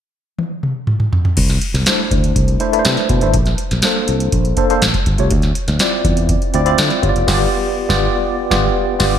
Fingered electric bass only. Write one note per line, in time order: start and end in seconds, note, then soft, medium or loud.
1.38 1.57 C2 loud
1.74 1.84 C2 medium
2.11 2.31 D2 medium
2.36 2.55 C2 medium
2.86 2.95 C3 medium
3.10 3.19 B2 medium
3.22 3.32 G1 medium
3.34 3.54 A#1 loud
3.71 3.81 A#1 medium
4.09 4.28 C2 medium
4.33 4.52 A#1 medium
4.82 4.92 A1 medium
5.07 5.16 G1 medium
5.19 5.29 C2 medium
5.31 5.51 D2 loud
5.68 5.78 D2 medium
6.05 6.34 E2 medium
6.54 6.74 D2 medium
6.79 6.89 D3 medium
7.03 7.13 G1 medium
7.16 7.27 F1 medium
7.28 7.45 G1 loud
7.90 8.06 G1 loud
8.51 8.68 G1 medium
9.00 9.17 G1 loud